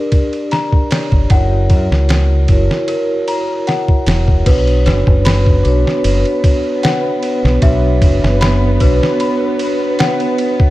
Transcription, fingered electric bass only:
1.12 1.28 G1 medium
1.30 1.71 F#1 medium
1.70 1.89 F#2 medium
1.91 2.46 C#2 medium
2.49 2.68 F#1 medium
4.07 4.42 E1 medium
4.46 4.88 B1 medium
4.86 5.05 F#1 medium
5.07 5.61 F#1 loud
5.65 5.84 B1 medium
6.05 6.23 F#1 medium
7.44 7.60 B1 medium
7.62 8.03 B1 medium
8.02 8.20 F#1 medium
8.23 8.78 F#1 medium
8.81 8.99 B1 medium

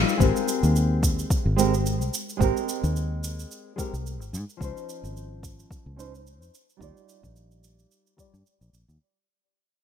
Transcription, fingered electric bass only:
0.20 0.31 G#1 medium
0.63 1.24 D#2 medium
1.46 2.01 G#1 medium
2.01 2.09 C2 medium
2.40 2.51 G#1 medium
2.83 3.44 D#2 loud
3.93 4.21 C2 medium
4.21 4.35 G#1 medium
4.33 4.43 G#2 medium
4.61 4.71 C#2 medium
5.03 5.64 G#1 medium
5.86 6.41 C#2 medium
6.41 6.49 F2 medium
6.81 6.91 D#2 medium
7.23 7.84 A#1 medium
8.34 8.42 G2 medium
8.61 8.69 A#1 medium
8.73 8.84 A#1 medium
8.88 8.97 D#2 medium

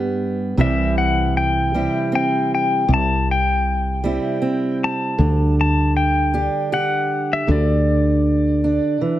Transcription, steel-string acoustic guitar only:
0.00 0.53 G2 medium
0.00 0.58 G3 soft
0.00 0.58 B3 medium
0.00 0.60 G4 medium
0.57 2.84 C3 medium
0.57 2.84 E3 medium
0.57 1.74 G3 medium
0.57 1.75 C4 medium
0.57 1.75 E4 medium
1.74 4.03 G3 soft
1.74 2.11 C4 medium
1.74 4.04 E4 medium
2.12 2.84 C4 medium
2.88 5.14 C3 medium
4.04 7.54 G3 medium
4.04 4.40 C4 medium
4.04 5.19 E4 medium
4.42 5.14 C4 medium
5.18 7.46 D3 medium
6.34 8.64 D4 medium
6.34 6.72 G4 medium
6.72 9.20 G4 medium
7.47 9.01 D3 medium
8.64 9.20 D4 medium
9.01 9.20 E3 medium

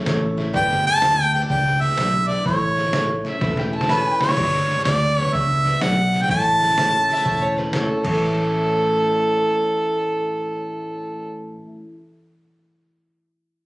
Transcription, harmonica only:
0.55 0.84 G5 loud
0.87 1.31 A5 loud
1.34 1.42 G5 medium
1.50 1.82 G5 loud
1.81 2.30 E5 loud
2.28 2.46 D5 medium
2.46 3.21 C#5 medium
3.89 4.18 B4 medium
4.21 4.82 C#5 medium
4.84 5.18 D5 medium
5.18 5.35 C#5 medium
5.33 5.83 E5 medium
5.81 6.24 F#5 loud
6.22 6.30 G5 medium
6.31 7.70 A5 loud

